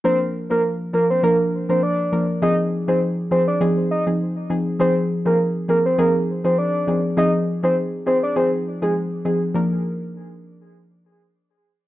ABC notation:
X:1
M:4/4
L:1/16
Q:"Swing 16ths" 1/4=101
K:Bbmix
V:1 name="Soft synth lead"
c z2 B z2 B c B z2 c d3 z | e z2 c z2 c d z2 e z4 z | c z2 B z2 B c B z2 c d3 z | e z2 c z2 c d c z2 A z4 |
z16 |]
V:2 name="Synth pluck"
[F,B,DB]3 [F,B,DB]3 [F,B,DB]2 [F,B,DB] z2 [F,B,DB]3 [F,B,DB]2 | [F,CEA]3 [F,CEA]3 [F,CEA]2 [F,CEA] z2 [F,CEA] z2 [F,CEA] z | [F,CEA]3 [F,CEA]3 [F,CEA]2 [F,CEA] z2 [F,CEA]3 [F,CEA]2 | [F,CEA]3 [F,CEA]3 [F,CEA]2 [F,CEA] z2 [F,CEA] z2 [F,CEA] z |
[F,B,DB]2 z12 z2 |]